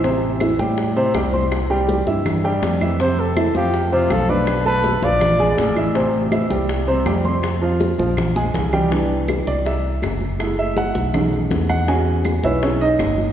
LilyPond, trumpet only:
\new Staff \with { instrumentName = "Trumpet" } { \time 4/4 \key c \major \tempo 4 = 162 r1 | r1 | c''8 a'4 g'4 f'8 a'8 b'8~ | b'8 b'4 d''2 r8 |
r1 | r1 | r1 | r1 |
r1 | }